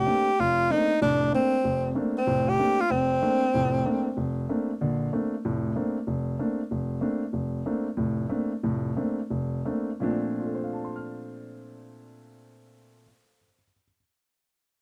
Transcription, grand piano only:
0.06 0.27 A3 medium
0.06 0.27 A#3 soft
0.06 0.27 C4 soft
0.06 0.28 D4 medium
0.39 0.66 F1 medium
0.70 0.91 A3 medium
0.70 0.91 A#3 soft
0.70 0.91 C4 soft
0.70 0.91 D4 medium
1.01 1.28 F1 medium
1.01 1.28 A2 medium
1.32 1.53 A3 soft
1.32 1.53 A#3 soft
1.32 1.54 C4 soft
1.32 1.54 D4 medium
1.64 1.91 F1 medium
1.95 2.16 A3 medium
1.95 2.17 A#3 soft
1.95 2.17 C4 soft
1.95 2.17 D4 medium
2.27 2.54 F1 medium
2.27 2.54 A2 medium
2.59 2.80 A3 soft
2.59 2.80 A#3 soft
2.59 2.80 C4 soft
2.59 2.80 D4 medium
2.90 3.18 F1 medium
3.22 3.43 A3 medium
3.22 3.43 A#3 soft
3.22 3.43 C4 soft
3.22 3.43 D4 medium
3.54 3.81 F1 medium
3.54 3.81 A2 medium
3.86 4.07 A3 medium
3.86 4.06 A#3 soft
3.86 4.07 C4 soft
3.86 4.07 D4 medium
4.17 4.44 F1 medium
4.49 4.70 A3 soft
4.49 4.70 A#3 soft
4.49 4.70 C4 soft
4.49 4.70 D4 medium
4.81 5.08 A#1 medium
4.81 5.08 D3 medium
5.13 5.33 A3 medium
5.13 5.33 A#3 soft
5.13 5.34 C4 soft
5.13 5.34 D4 medium
5.45 5.71 F1 medium
5.45 5.71 A2 medium
5.76 5.96 A3 soft
5.76 5.97 A#3 soft
5.76 5.97 C4 soft
5.76 5.97 D4 medium
6.07 6.34 F1 medium
6.39 6.60 A3 soft
6.39 6.60 A#3 soft
6.39 6.60 C4 soft
6.39 6.60 D4 medium
6.71 6.98 F1 medium
7.01 7.22 A3 soft
7.01 7.22 A#3 soft
7.01 7.22 C4 soft
7.01 7.23 D4 medium
7.33 7.60 F1 medium
7.66 7.86 A3 soft
7.66 7.87 A#3 soft
7.66 7.87 C4 soft
7.66 7.87 D4 medium
7.97 8.25 F1 medium
7.97 8.24 A2 medium
8.29 8.51 A3 medium
8.29 8.51 A#3 soft
8.29 8.51 C4 soft
8.29 8.52 D4 medium
8.63 8.91 F1 medium
8.63 8.91 A2 medium
8.97 9.19 A3 medium
8.97 9.19 A#3 soft
8.97 9.19 C4 soft
8.97 9.19 D4 soft
9.30 9.60 F1 medium
9.65 9.89 A3 soft
9.65 9.89 A#3 soft
9.65 9.89 C4 soft
9.65 9.89 D4 soft
10.00 13.03 A#2 medium
10.00 13.04 F3 medium
10.00 13.04 A3 medium
10.00 13.05 C4 medium
10.00 13.06 D4 medium
10.39 13.37 F4 soft
10.47 13.45 A4 soft
10.55 13.53 C5 soft
10.64 13.62 F5 soft
10.73 13.72 A5 soft
10.85 13.83 C6 soft
10.96 13.94 F6 soft

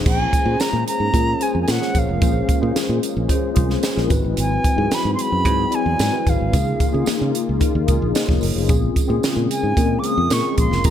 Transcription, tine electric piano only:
0.05 0.42 C#4 medium
0.05 0.43 F4 medium
0.05 0.43 G#4 medium
0.05 0.43 C5 medium
0.45 1.07 C#4 medium
0.45 1.07 F4 medium
0.45 1.07 G#4 medium
0.45 1.08 C5 medium
1.12 1.37 C#4 medium
1.12 1.38 F4 medium
1.12 1.38 G#4 medium
1.12 1.38 A#4 medium
1.40 1.77 C#4 medium
1.40 1.77 F4 medium
1.40 1.77 G#4 medium
1.40 1.78 C5 medium
1.81 2.18 C#4 medium
1.81 2.18 F4 medium
1.81 2.18 G#4 medium
1.81 2.18 C#5 medium
2.21 2.58 C#4 medium
2.21 2.59 F4 medium
2.21 2.59 G#4 medium
2.21 2.59 C5 medium
2.60 3.23 C#4 medium
2.60 3.23 F4 medium
2.60 3.23 G#4 medium
2.60 3.23 C5 medium
3.28 3.53 C#4 medium
3.28 3.53 F4 medium
3.28 3.54 G#4 medium
3.28 3.54 C5 medium
3.54 3.92 C#4 medium
3.54 3.92 F4 medium
3.54 3.93 G#4 medium
3.54 3.93 C5 medium
3.95 4.10 C#4 medium
3.95 4.10 F4 medium
3.95 4.10 G#4 medium
3.95 4.10 A#4 medium
4.09 4.71 C4 medium
4.09 4.71 E4 medium
4.09 4.72 F#4 medium
4.09 4.72 B4 medium
4.76 5.38 C4 medium
4.76 5.38 E4 medium
4.76 5.39 F#4 medium
4.76 5.39 G#4 medium
5.44 5.69 C4 medium
5.44 5.69 E4 medium
5.44 5.70 F#4 medium
5.44 5.70 G#4 medium
5.70 6.08 C4 medium
5.70 6.08 E4 medium
5.70 6.08 F#4 medium
5.70 6.09 D5 medium
6.11 6.49 C4 medium
6.11 6.49 E4 medium
6.11 6.49 F#4 medium
6.11 6.50 B4 medium
6.52 6.89 A#3 medium
6.52 6.90 D#4 medium
6.52 6.90 F4 medium
6.52 6.90 G#4 medium
6.92 7.54 A#3 medium
6.92 7.55 D#4 medium
6.92 7.54 F4 medium
6.92 7.55 G#4 medium
7.60 7.85 A#3 medium
7.60 7.85 D#4 medium
7.60 7.85 F4 medium
7.60 7.86 A#4 medium
7.86 8.24 A#3 medium
7.86 8.24 D#4 medium
7.86 8.15 F4 medium
7.86 8.15 G#4 medium
8.14 8.28 C5 medium
8.14 8.28 D#5 medium
8.27 8.40 A#4 medium
8.27 8.41 C#5 medium
8.41 8.54 A#4 medium
8.55 8.67 F4 medium
8.55 8.68 G#4 medium
8.68 9.05 C4 medium
8.68 9.05 C#4 medium
8.68 9.06 F4 medium
8.68 9.06 G#4 medium
9.07 9.70 C4 medium
9.07 9.70 C#4 medium
9.07 9.70 F4 medium
9.07 9.71 G#4 loud
9.77 10.01 C4 medium
9.77 10.02 C#4 medium
9.77 10.02 F4 medium
9.77 10.02 A#4 medium
10.03 10.40 C4 medium
10.03 10.40 C#4 medium
10.03 10.41 F4 medium
10.03 10.41 A#4 medium
10.43 10.81 C4 medium
10.43 10.81 C#4 medium
10.43 10.81 F4 medium
10.43 10.81 G#4 medium
10.84 10.90 C4 medium
10.84 10.90 C#4 medium
10.84 10.90 F4 medium
10.84 10.90 G#4 medium

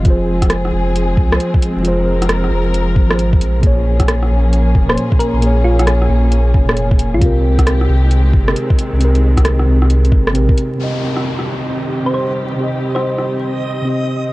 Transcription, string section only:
0.06 7.18 F3 medium
0.06 3.60 G#3 medium
0.06 3.60 C4 medium
0.06 1.83 G#4 medium
1.85 3.62 A#4 medium
3.63 7.18 A#3 medium
3.63 7.18 C#4 medium
3.63 7.18 G#4 medium
7.21 10.76 D#3 medium
7.21 10.76 G#3 medium
7.21 10.76 C4 medium
7.21 8.99 G4 medium
10.79 14.33 D#3 medium
10.79 14.33 G3 medium
10.79 14.33 C4 medium
10.79 14.33 G4 medium

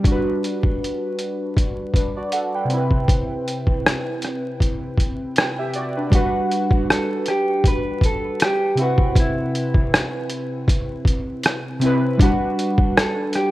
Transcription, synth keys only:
0.00 2.64 G3 medium
0.00 1.53 D4 medium
0.07 1.55 F#4 medium
0.12 1.57 B4 medium
1.96 2.16 D4 soft
1.96 2.15 B4 medium
2.17 2.32 F#4 medium
2.17 2.32 D5 medium
2.33 2.53 A4 soft
2.33 2.53 F#5 medium
2.55 2.76 B4 medium
2.55 2.90 G5 medium
2.65 5.29 C3 medium
2.69 5.31 C4 medium
2.73 5.33 E4 medium
2.73 5.35 B4 medium
5.37 5.58 B4 soft
5.37 5.57 G5 medium
5.59 5.74 G4 medium
5.59 5.74 E5 medium
5.75 5.96 F#4 medium
5.75 5.95 D5 medium
5.97 6.11 D4 soft
5.97 6.15 B4 medium
6.10 7.11 G3 medium
6.10 7.12 D4 medium
6.10 7.13 F#4 medium
6.16 7.14 B4 medium
8.75 9.99 C3 medium
8.75 10.00 C4 medium
8.75 10.01 E4 medium
8.81 10.02 B4 medium
11.79 12.07 C3 medium
11.79 12.08 C4 medium
11.79 12.09 E4 medium
11.85 12.10 B4 loud
12.17 13.18 G3 medium
12.17 13.19 D4 medium
12.17 13.20 F#4 medium
12.23 13.21 B4 medium

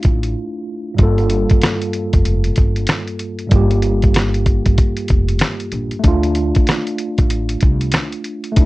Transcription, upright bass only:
0.05 0.33 A1 medium
0.99 1.45 G1 loud
2.14 2.52 F1 medium
2.58 2.85 G1 loud
3.52 4.62 G1 loud
4.66 4.77 G1 medium
5.10 5.38 F1 medium
5.72 5.90 A#1 medium
6.04 6.50 D2 loud
7.19 7.57 A1 medium
7.63 7.91 C2 loud
8.57 8.66 D2 loud

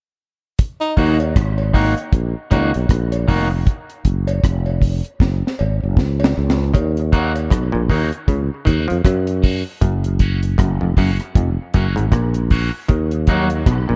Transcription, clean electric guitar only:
0.97 1.16 D#3 medium
0.97 1.16 A#3 medium
0.97 1.16 D#4 medium
0.97 1.17 F#4 loud
1.74 1.93 D#3 medium
1.74 1.93 A#3 medium
1.74 1.93 D#4 medium
1.74 1.94 F#4 medium
2.51 2.70 D#3 medium
2.51 2.70 A#3 medium
2.51 2.70 D#4 medium
2.51 2.71 F#4 medium
3.28 3.47 D#3 medium
3.28 3.47 A#3 medium
3.28 3.47 D#4 loud
3.28 3.48 F#4 medium
3.50 muted clean electric guitar stroke soft
7.12 7.31 F#3 medium
7.12 7.32 A#3 medium
7.12 7.32 D#4 medium
7.12 7.32 F#4 loud
7.90 8.08 F#3 medium
7.90 8.09 A#3 medium
7.90 8.09 D#4 medium
7.90 8.09 F#4 medium
8.65 8.85 F#3 medium
8.65 8.85 A#3 medium
8.65 8.85 D#4 loud
8.65 8.86 F#4 loud
9.42 9.62 F#3 medium
9.42 9.62 A#3 medium
9.42 9.62 D#4 medium
9.42 9.63 F#4 loud
10.20 10.39 F#3 medium
10.20 10.39 A#3 medium
10.20 10.40 C#4 loud
10.20 10.40 F#4 medium
10.97 11.16 F#3 medium
10.97 11.16 A#3 medium
10.97 11.17 C#4 medium
10.97 11.17 F#4 medium
11.75 11.93 F#3 medium
11.75 11.93 A#3 medium
11.75 11.94 C#4 medium
11.75 11.94 F#4 medium
12.51 12.70 F#3 medium
12.51 12.70 A#3 loud
12.51 12.70 C#4 loud
12.51 12.70 F#4 loud
13.29 13.47 F#3 medium
13.29 13.47 A#3 loud
13.29 13.47 D#4 medium
13.29 13.47 F#4 loud

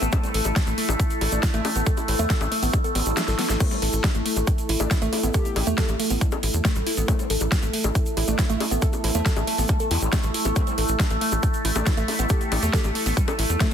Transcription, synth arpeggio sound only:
0.02 0.12 B3 medium
0.13 0.23 A3 medium
0.23 0.28 G3 medium
0.34 0.39 A4 medium
0.67 0.74 A3 medium
0.78 0.88 A3 medium
1.21 1.32 E4 medium
1.32 1.39 A3 medium
1.43 1.50 E4 medium
1.54 1.58 A3 loud
1.65 1.75 A3 medium
1.76 1.86 B3 medium
1.86 1.97 A4 medium
1.97 2.04 E4 medium
2.08 2.19 E4 medium
2.19 2.26 A3 loud
2.30 2.37 A4 loud
2.52 2.62 A3 medium
2.63 2.73 B3 medium
2.73 2.84 G3 medium
2.84 2.91 A4 medium
2.95 3.02 B3 medium
3.17 3.27 A3 medium
3.28 3.35 A4 medium
3.39 3.46 B3 medium
3.50 3.57 A3 medium
3.60 3.71 A3 medium
3.71 3.76 G3 medium
3.82 3.86 A4 medium
4.15 4.22 A3 medium
4.26 4.36 A3 medium
4.69 4.79 E4 medium
4.80 4.87 A3 medium
4.91 4.98 E4 medium
5.02 5.06 A3 loud
5.13 5.23 A3 medium
5.23 5.34 B3 medium
5.34 5.45 A4 medium
5.56 5.66 E4 medium
5.67 5.74 A3 loud
5.78 5.85 A4 loud
6.00 6.10 A3 medium
6.10 6.21 B3 medium
6.21 6.32 G3 medium
6.32 6.39 A4 medium
6.43 6.53 E4 medium
6.65 6.72 A3 loud
6.76 6.83 G3 medium
6.87 6.94 E4 medium
6.97 7.08 B3 medium
7.08 7.19 A3 medium
7.19 7.23 G3 medium
7.30 7.34 A4 medium
7.63 7.70 A3 medium
7.73 7.84 A3 medium
8.17 8.27 E4 medium
8.28 8.35 A3 medium
8.39 8.46 E4 medium
8.50 8.54 A3 loud
8.60 8.71 A3 medium
8.71 8.82 B3 medium
8.82 8.92 A4 medium
9.04 9.14 E4 medium
9.15 9.22 A3 loud
9.26 9.33 A4 loud
9.47 9.58 A3 medium
9.58 9.69 B3 medium
9.69 9.79 G3 medium
9.80 9.87 A4 medium
9.91 10.01 E4 medium
10.13 10.20 A3 loud
10.24 10.31 G3 medium
10.34 10.41 E4 medium
10.45 10.56 B3 medium
10.56 10.66 A3 medium
10.67 10.71 G3 medium
10.78 10.82 A4 medium
11.10 11.18 A3 medium
11.21 11.32 A3 medium
11.65 11.75 E4 medium
11.76 11.83 A3 medium
11.87 11.94 E4 medium
11.97 12.02 A3 loud
12.08 12.19 A3 medium
12.19 12.29 B3 medium
12.30 12.40 A4 medium
12.52 12.62 E4 medium
12.63 12.70 A3 loud
12.73 12.81 A4 loud
12.95 13.06 A3 medium
13.06 13.16 B3 medium
13.17 13.27 G3 medium
13.28 13.35 A4 medium
13.39 13.49 E4 medium
13.60 13.68 A3 loud

